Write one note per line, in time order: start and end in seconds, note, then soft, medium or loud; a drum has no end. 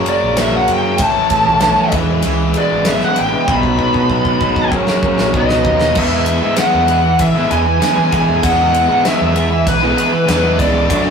0.00 0.17 F#1 medium
0.00 0.98 F#2 medium
0.00 0.98 C#3 medium
0.00 0.99 C#3 medium
0.00 0.98 F#3 medium
0.00 0.99 F#3 medium
0.00 0.99 A#3 medium
0.00 0.99 C#4 loud
0.00 0.99 A#4 medium
0.06 0.67 F#3 medium
0.06 0.38 D5 medium
0.06 ride medium
0.22 0.64 A#1 medium
0.37 1.00 A#3 medium
0.37 0.54 E5 medium
0.37 snare loud
0.37 ride medium
0.56 0.70 F#5 medium
0.68 0.96 F#2 medium
0.68 1.00 F#3 medium
0.68 ride medium
0.73 1.01 G5 medium
0.98 1.46 A1 loud
0.98 1.91 A2 medium
0.98 1.92 E3 medium
0.98 1.92 A3 medium
0.98 1.92 C#4 loud
0.98 1.92 E4 medium
0.98 1.92 C#5 medium
0.98 kick loud
0.98 ride loud
1.02 1.93 E4 medium
1.02 1.92 A5 loud
1.30 1.92 E3 medium
1.30 kick medium
1.30 ride medium
1.46 1.74 B1 medium
1.61 1.93 A3 medium
1.61 snare loud
1.61 ride medium
1.92 2.21 E1 medium
1.92 3.46 E3 medium
1.92 3.47 G#3 medium
1.92 3.48 B3 medium
1.92 3.47 E4 medium
1.92 3.47 B4 medium
1.92 kick loud
1.92 ride medium
1.96 3.48 E4 medium
2.22 2.52 C#2 loud
2.22 3.47 E3 medium
2.22 ride medium
2.54 3.17 G#3 medium
2.54 ride medium
2.58 2.87 D5 medium
2.72 2.99 G#1 medium
2.85 3.49 B3 medium
2.85 3.04 E5 medium
2.85 snare loud
2.85 ride medium
3.00 snare soft
3.04 3.18 F#5 medium
3.16 3.32 A1 medium
3.16 3.49 G#3 medium
3.16 3.48 G5 medium
3.16 ride medium
3.47 3.76 B1 loud
3.47 4.70 B2 medium
3.47 4.71 F#3 medium
3.47 3.69 G3 medium
3.47 4.71 B3 medium
3.47 4.72 D#4 loud
3.47 3.69 E4 medium
3.47 3.69 C5 medium
3.47 4.70 B5 loud
3.47 kick loud
3.63 kick medium
3.67 4.71 F#3 medium
3.67 4.71 D#4 medium
3.67 4.71 B4 medium
3.79 4.72 B2 medium
3.79 kick medium
3.94 4.23 B2 medium
3.94 kick medium
4.10 4.73 F#3 medium
4.10 kick medium
4.25 kick medium
4.41 4.69 G#1 medium
4.41 4.73 B3 medium
4.41 kick medium
4.56 kick medium
4.71 5.14 F#1 medium
4.71 5.32 F#2 medium
4.71 5.33 C#3 medium
4.71 5.33 F#3 medium
4.71 5.35 F#3 medium
4.71 5.33 A#3 medium
4.71 5.35 C#4 medium
4.71 5.34 C#4 loud
4.71 5.35 A#4 medium
4.71 kick medium
4.87 snare medium
5.03 5.35 F#3 medium
5.03 kick medium
5.18 5.33 A#1 medium
5.18 snare medium
5.34 5.62 C#2 medium
5.34 5.94 B2 medium
5.34 5.95 F#3 medium
5.34 5.97 F#3 medium
5.34 5.95 B3 loud
5.34 5.97 D#4 medium
5.34 5.96 D#4 medium
5.34 5.97 B4 medium
5.34 5.98 D#5 medium
5.34 kick loud
5.49 snare medium
5.65 5.93 D#2 medium
5.65 5.96 F#3 medium
5.65 kick medium
5.80 snare medium
5.95 6.38 E2 loud
5.95 6.56 E3 medium
5.95 6.44 G#3 medium
5.95 8.42 G#3 medium
5.95 6.43 B3 medium
5.95 6.41 E4 medium
5.95 6.42 G#4 medium
5.95 8.42 B4 medium
5.95 6.61 E5 loud
5.95 kick loud
5.95 crash loud
5.99 8.43 E4 medium
6.26 ride medium
6.41 6.57 G#2 medium
6.41 6.57 G#3 medium
6.41 6.58 B3 medium
6.41 6.59 E4 medium
6.41 6.59 G#4 medium
6.57 6.88 E3 medium
6.57 6.89 G#3 medium
6.57 6.90 B3 loud
6.57 6.90 E4 loud
6.57 6.89 G#4 loud
6.57 7.23 F#5 medium
6.57 snare loud
6.57 ride medium
6.74 7.15 E2 medium
6.88 7.35 E3 medium
6.88 7.04 G#3 medium
6.88 7.03 B3 medium
6.88 7.03 E4 medium
6.88 7.03 G#4 medium
6.88 ride medium
7.04 muted distorted electric guitar stroke soft
7.04 muted overdriven electric guitar stroke soft
7.19 7.34 E3 medium
7.19 7.52 E5 medium
7.19 kick loud
7.19 ride medium
7.35 7.49 G#3 medium
7.35 7.50 B3 medium
7.35 7.51 E4 medium
7.35 7.51 G#4 medium
7.49 7.79 E2 medium
7.49 7.78 E3 medium
7.49 7.64 G#3 medium
7.49 7.63 B3 medium
7.49 7.63 E4 medium
7.49 7.65 G#4 medium
7.49 8.13 G#5 medium
7.49 ride medium
7.64 muted overdriven electric guitar stroke soft
7.64 muted distorted electric guitar stroke medium
7.79 8.10 E3 medium
7.79 7.96 G#3 medium
7.79 7.95 B3 medium
7.79 7.94 E4 medium
7.79 8.12 G#4 medium
7.79 snare loud
7.79 ride medium
7.95 8.25 E3 medium
7.95 8.11 G#3 medium
7.95 8.11 B3 medium
7.95 8.13 E4 medium
8.11 8.41 E3 medium
8.11 8.42 G#3 medium
8.11 8.43 B3 medium
8.11 8.44 E4 medium
8.11 8.43 G#4 medium
8.11 8.42 G#5 medium
8.11 kick medium
8.11 ride medium
8.28 8.42 E2 medium
8.43 8.84 E2 medium
8.43 9.03 E3 medium
8.43 8.90 G#3 loud
8.43 10.88 G#3 medium
8.43 8.89 B3 loud
8.43 10.88 B3 medium
8.43 10.88 E4 medium
8.43 8.88 E4 loud
8.43 8.87 G#4 loud
8.43 9.02 F#5 loud
8.43 kick loud
8.43 ride medium
8.74 ride medium
8.88 9.04 G#2 medium
8.88 9.04 G#3 medium
8.88 9.04 B3 medium
8.88 9.05 E4 medium
8.88 9.05 G#4 medium
9.04 9.34 E3 medium
9.04 9.35 G#3 medium
9.04 9.36 B3 loud
9.04 9.37 E4 medium
9.04 9.36 G#4 loud
9.04 9.69 E5 medium
9.04 snare loud
9.04 ride medium
9.21 9.62 E2 medium
9.35 9.82 E3 medium
9.35 9.50 G#3 medium
9.35 9.50 B3 medium
9.35 9.50 E4 medium
9.35 9.50 G#4 medium
9.35 ride medium
9.51 muted overdriven electric guitar stroke medium
9.51 muted distorted electric guitar stroke soft
9.67 9.94 B1 medium
9.67 10.62 B4 medium
9.67 kick loud
9.67 ride medium
9.81 9.96 G#3 medium
9.81 9.97 B3 medium
9.81 9.98 E4 medium
9.81 9.97 G#4 medium
9.97 10.25 E3 medium
9.97 10.12 G#3 medium
9.97 10.12 B3 medium
9.97 10.11 E4 medium
9.97 10.11 G#4 medium
9.97 ride medium
10.12 muted distorted electric guitar stroke medium
10.12 muted overdriven electric guitar stroke soft
10.26 10.56 E2 medium
10.26 10.57 E3 medium
10.26 10.44 G#3 medium
10.26 10.43 B3 loud
10.26 10.42 E4 medium
10.26 10.59 G#4 loud
10.26 snare loud
10.26 ride loud
10.43 10.58 G#3 medium
10.43 10.59 B3 medium
10.43 10.60 E4 medium
10.58 10.86 C#2 medium
10.58 10.87 E3 medium
10.58 10.88 G#3 medium
10.58 10.88 B3 medium
10.58 10.89 E4 medium
10.58 10.89 G#4 medium
10.58 11.10 D5 medium
10.58 kick medium
10.58 ride medium
10.89 11.10 F#2 loud
10.89 11.10 F#3 medium
10.89 11.10 A3 medium
10.89 11.10 D4 medium
10.89 11.10 F#4 loud
10.89 11.10 A4 medium
10.89 kick loud
10.89 ride loud